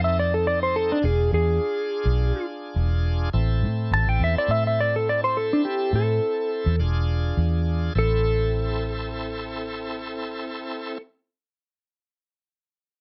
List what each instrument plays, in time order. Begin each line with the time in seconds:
Already playing: fingered electric bass F2, tonewheel organ C4 D#4 A4
0.04 electric slide guitar E5
0.19 electric slide guitar D5
0.34 electric slide guitar A4
0.47 electric slide guitar D5
0.63 electric slide guitar C5
0.76 electric slide guitar A4
0.92 electric slide guitar D4
1.02 fingered electric bass E1, tonewheel organ D4 F4 G#4, electric slide guitar G#4
1.33 fingered electric bass E2, electric slide guitar G#4
2.05 fingered electric bass B1
2.76 fingered electric bass E1
3.33 fingered electric bass A1, tonewheel organ C4 E4 A4
3.62 fingered electric bass A2
3.91 fingered electric bass A1, electric slide guitar A5
4.07 fingered electric bass A1, electric slide guitar G5
4.20 fingered electric bass E2, electric slide guitar E5
4.36 electric slide guitar D5, muted fingered electric bass stroke
4.48 fingered electric bass A2, electric slide guitar E5
4.67 electric slide guitar E5
4.81 electric slide guitar D5
4.96 electric slide guitar A4
5.09 electric slide guitar D5
5.24 electric slide guitar C5
5.37 electric slide guitar A4
5.53 electric slide guitar D4
5.65 electric slide guitar G4
5.93 fingered electric bass A2, electric slide guitar A4
6.66 fingered electric bass E2
6.80 fingered electric bass E1, tonewheel organ D4 F4 G#4
7.37 fingered electric bass E2
7.95 fingered electric bass A1, tonewheel organ C4 E4 A4, electric slide guitar A4